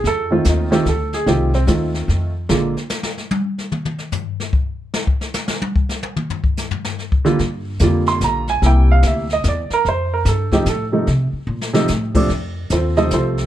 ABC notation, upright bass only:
X:1
M:3/4
L:1/8
Q:"Swing" 1/4=147
K:Fmix
V:1 name="Upright bass" clef=bass
F,,2 E,,2 D,,2 | C,,2 E,,2 F,,2 | B,,, z4 z | z6 |
z6 | z6 | G,,2 F,,2 B,,,2 | C,,2 D,,2 =E,, z |
F,,2 G,,2 A,,2 | C, z B,,2 A,,2 | F,,2 E,,2 C,,2 |]